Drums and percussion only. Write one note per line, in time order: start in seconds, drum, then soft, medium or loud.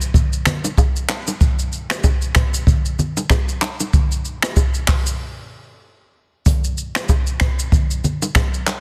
0.01 shaker medium
0.14 kick loud
0.14 low conga medium
0.14 shaker medium
0.33 shaker medium
0.46 finger snap medium
0.46 cross-stick medium
0.46 low conga medium
0.46 shaker medium
0.64 low bongo medium
0.64 shaker medium
0.78 kick medium
0.78 high bongo medium
0.78 shaker medium
0.96 shaker medium
1.09 finger snap medium
1.09 cross-stick loud
1.09 clap loud
1.09 low bongo medium
1.09 shaker soft
1.27 low bongo medium
1.27 shaker loud
1.41 kick loud
1.41 low conga medium
1.41 shaker medium
1.59 shaker medium
1.72 shaker soft
1.90 finger snap loud
1.90 cross-stick loud
1.90 shaker medium
2.04 kick loud
2.04 high bongo medium
2.04 shaker medium
2.22 shaker medium
2.35 finger snap medium
2.35 kick loud
2.35 cross-stick loud
2.35 shaker medium
2.54 shaker loud
2.67 kick loud
2.67 low conga medium
2.67 shaker medium
2.85 shaker medium
2.99 low conga medium
2.99 shaker medium
3.17 low bongo medium
3.17 shaker medium
3.30 finger snap medium
3.30 kick medium
3.30 cross-stick loud
3.30 high bongo medium
3.30 shaker medium
3.49 shaker medium
3.62 clap loud
3.62 low bongo medium
3.62 shaker soft
3.80 low bongo medium
3.80 shaker loud
3.93 kick loud
3.93 low conga medium
3.93 shaker medium
4.12 shaker medium
4.25 shaker soft
4.42 finger snap loud
4.42 cross-stick loud
4.42 shaker medium
4.56 kick loud
4.56 high bongo medium
4.56 shaker medium
4.74 shaker medium
4.87 finger snap medium
4.87 kick loud
4.87 cross-stick medium
4.87 clap loud
4.87 open hi-hat medium
4.87 shaker medium
5.06 shaker loud
6.46 kick loud
6.46 hi-hat pedal medium
6.46 low conga medium
6.46 shaker medium
6.64 shaker medium
6.78 shaker soft
6.95 finger snap medium
6.95 cross-stick loud
6.95 shaker medium
7.09 kick loud
7.09 high bongo medium
7.09 shaker medium
7.27 shaker medium
7.40 finger snap medium
7.40 kick loud
7.40 cross-stick loud
7.40 shaker medium
7.59 shaker loud
7.72 kick loud
7.72 low conga medium
7.72 shaker medium
7.91 shaker medium
8.04 low conga medium
8.04 shaker medium
8.22 low bongo medium
8.22 shaker medium
8.35 finger snap medium
8.35 kick medium
8.35 cross-stick loud
8.35 high bongo medium
8.35 shaker medium
8.54 shaker medium
8.67 clap loud
8.67 low bongo medium
8.67 shaker medium